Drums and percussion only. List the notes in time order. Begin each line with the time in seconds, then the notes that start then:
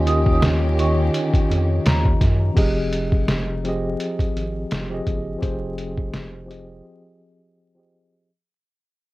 0.07 closed hi-hat
0.26 kick
0.42 snare, closed hi-hat
0.79 closed hi-hat
1.14 closed hi-hat
1.34 kick, closed hi-hat
1.51 closed hi-hat
1.85 snare, closed hi-hat
2.05 kick
2.21 kick, snare, closed hi-hat
2.57 kick, closed hi-hat, crash
2.93 closed hi-hat
3.12 kick
3.28 snare, closed hi-hat
3.65 closed hi-hat
4.00 closed hi-hat
4.19 kick, closed hi-hat
4.37 closed hi-hat
4.71 snare, closed hi-hat
5.07 kick, closed hi-hat
5.42 kick, closed hi-hat
5.78 closed hi-hat
5.98 kick
6.14 snare, closed hi-hat
6.51 closed hi-hat